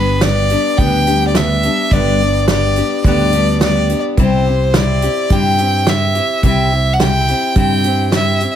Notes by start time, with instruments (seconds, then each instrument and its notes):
Already playing: fingered electric bass G1, steel-string acoustic guitar G3 B3 D4 G4, fiddle B4
0.21 steel-string acoustic guitar G3 B3 D4 G4, fiddle D5, snare, closed hi-hat
0.50 steel-string acoustic guitar G3 B3 D4 G4, closed hi-hat
0.78 fingered electric bass D2, steel-string acoustic guitar G2 D3 G3 B3 D4 G4, fiddle G5, kick, closed hi-hat
1.07 steel-string acoustic guitar G3 B3 D4 G4, closed hi-hat
1.27 fiddle D5
1.35 steel-string acoustic guitar G3 B3 D4 G4, fiddle E5, snare, closed hi-hat
1.63 steel-string acoustic guitar G3 B3 D4 G4, closed hi-hat
1.91 fingered electric bass G1, steel-string acoustic guitar G2 D3 G3 B3 D4 G4, fiddle D5, kick, closed hi-hat
2.20 steel-string acoustic guitar G3 B3 D4 G4
2.48 steel-string acoustic guitar G3 B3 D4 G4, fiddle D5, snare, closed hi-hat
2.76 steel-string acoustic guitar G3 B3 D4 G4, closed hi-hat
3.04 fingered electric bass D2, steel-string acoustic guitar G2 D3 G3 B3 D4 G4, fiddle D5, kick, closed hi-hat
3.33 steel-string acoustic guitar G3 B3 D4 G4, closed hi-hat
3.61 steel-string acoustic guitar G3 B3 D4 G4, fiddle D5, snare, closed hi-hat
3.90 steel-string acoustic guitar G3 B3 D4 G4, closed hi-hat
4.17 fingered electric bass C2, steel-string acoustic guitar C3 G3 C4 E4 G4, fiddle C5, kick, closed hi-hat
4.46 steel-string acoustic guitar C4 E4 G4
4.74 steel-string acoustic guitar G3 C4 E4 G4, fiddle D5, snare, closed hi-hat
5.02 steel-string acoustic guitar C4 E4 G4, closed hi-hat
5.30 fingered electric bass G2, steel-string acoustic guitar C3 G3 C4 E4 G4, fiddle G5, kick, closed hi-hat
5.58 steel-string acoustic guitar C4 E4 G4, closed hi-hat
5.87 steel-string acoustic guitar G3 C4 E4 G4, fiddle E5, snare, closed hi-hat
6.15 steel-string acoustic guitar C4 E4 G4, closed hi-hat
6.43 fingered electric bass C2, steel-string acoustic guitar C3 G3 C4 E4 G4, fiddle E5, kick, closed hi-hat
6.72 steel-string acoustic guitar C4 E4 G4
6.93 fiddle F#5
7.00 steel-string acoustic guitar G3 C4 E4 G4, fiddle G5, snare, closed hi-hat
7.28 steel-string acoustic guitar C4 E4 G4, closed hi-hat
7.56 fingered electric bass G2, steel-string acoustic guitar C3 G3 C4 E4 G4, fiddle G5, kick, closed hi-hat
7.84 steel-string acoustic guitar C4 E4 G4, closed hi-hat
8.12 steel-string acoustic guitar G3 C4 E4 G4, fiddle E5, snare, closed hi-hat
8.40 steel-string acoustic guitar C4 E4 G4, closed hi-hat